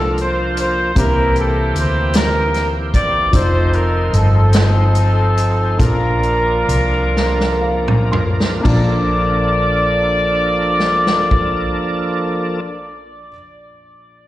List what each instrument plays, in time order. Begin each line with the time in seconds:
Already playing: fingered electric bass C2, grand piano A#2 A#3 D4 F4 D5 A5, tonewheel organ F3 A#3 D4 F4, horn section A4
0.18 horn section C5, closed hi-hat
0.57 horn section C5, closed hi-hat
0.95 fingered electric bass C2, grand piano C3 A#3 C4 E4 G4 C5, tonewheel organ E3 A#3 C4 G4, horn section E4 G4 A#4, kick, closed hi-hat
1.36 horn section A4, closed hi-hat
1.75 fingered electric bass D2, horn section C5, closed hi-hat
2.14 horn section A#4, snare, closed hi-hat
2.54 snare, closed hi-hat
2.94 horn section D5, kick, closed hi-hat
3.32 fingered electric bass F1, grand piano F3 C4 D#4 F4 C5, tonewheel organ F3 C4 D#4 G4, horn section D#4 A4 C5, kick, closed hi-hat
3.41 tonewheel organ C5
3.73 horn section A#4, closed hi-hat
4.13 fingered electric bass G1, horn section A4, closed hi-hat
4.53 horn section C4 D#4 A4, snare, closed hi-hat
4.95 closed hi-hat
5.37 closed hi-hat
5.77 fingered electric bass A#1, grand piano A#2 A#3 D4 F4 D5 A5, tonewheel organ F3 A#3 D4 A#4, horn section D4 F4 A#4, kick, closed hi-hat
6.23 closed hi-hat
6.68 fingered electric bass C2, closed hi-hat
7.17 snare
7.41 snare
7.62 grand piano F5
7.88 mid tom
8.12 grand piano C6, floor tom
8.40 snare
8.61 tonewheel organ F3 A#3 D4, grand piano A#3 D4 F4
8.65 fingered electric bass A#1, grand piano A#1 A4 D5, tonewheel organ A4, horn section D5, kick, crash
10.80 snare
11.07 snare
11.31 kick